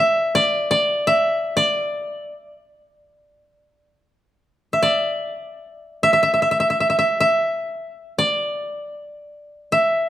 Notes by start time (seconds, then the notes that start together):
Already playing: D5 E5
0.35 D5
0.71 D5
1.07 E5
1.57 D5
4.73 E5
4.83 D5
6.03 E5
6.13 E5
6.23 E5
6.34 E5
6.42 E5
6.51 E5
6.60 E5
6.70 E5
6.80 E5
6.90 E5
6.99 E5
7.20 E5
8.18 D5
9.72 E5